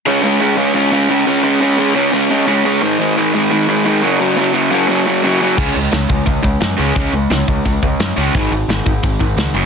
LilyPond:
<<
  \new Staff \with { instrumentName = "Overdriven electric guitar" } { \clef bass \time 4/4 \key gis \minor \tempo 4 = 174 <cis gis cis'>8 <cis gis cis'>8 <cis gis cis'>8 <cis gis cis'>8 <cis gis cis'>8 <cis gis cis'>8 <cis gis cis'>8 <cis gis cis'>8 | <cis gis cis'>8 <cis gis cis'>8 <cis gis cis'>8 <cis gis cis'>8 <cis gis cis'>8 <cis gis cis'>8 <cis gis cis'>8 <cis gis cis'>8 | <gis, dis gis>8 <gis, dis gis>8 <gis, dis gis>8 <gis, dis gis>8 <gis, dis gis>8 <gis, dis gis>8 <gis, dis gis>8 <fis, cis fis>8 | <fis, cis fis>8 <fis, cis fis>8 <fis, cis fis>8 <fis, cis fis>8 <fis, cis fis>8 <fis, cis fis>8 <fis, cis fis>8 <fis, cis fis>8 |
<cis gis cis'>8 <cis gis>8 <cis gis>8 <cis gis>8 <cis gis>8 <cis gis>8 <cis gis>8 <cis gis cis'>8 | <cis gis cis'>8 <cis gis>8 <cis gis>8 <cis gis>8 <cis gis>8 <cis gis>8 <cis gis>8 <cis gis cis'>8 | <gis, dis gis>8 <gis, dis>8 <gis, dis>8 <gis, dis>8 <gis, dis>8 <gis, dis>8 <gis, dis>8 <fis, cis fis>8 | }
  \new Staff \with { instrumentName = "Picked electric bass" } { \clef bass \time 4/4 \key gis \minor r1 | r1 | r1 | r1 |
cis,8 cis,8 cis,8 cis,8 cis,8 cis,8 fis,8 cis,8 | cis,8 cis,8 cis,8 cis,8 cis,8 cis,8 fis,8 cis,8 | gis,,8 gis,,8 gis,,8 gis,,8 gis,,8 gis,,8 cis,8 fis,,8 | }
  \new DrumStaff \with { instrumentName = "Drums" } \drummode { \time 4/4 r4 r4 r4 r4 | r4 r4 r4 r4 | r4 r4 r4 r4 | r4 r4 r4 r4 |
<cymc bd>8 hho8 <hho sn>8 <hho bd>8 <hho bd>8 <hho bd>8 <hho sn>8 hho8 | <hho bd>8 hho8 <hho sn>8 <hho bd>8 <hho bd>8 <hho bd>8 <hho sn>8 hho8 | <hho bd>8 hho8 <hho sn>8 <hho bd>8 <hho bd>8 <hho bd>8 <hho sn>8 hho8 | }
>>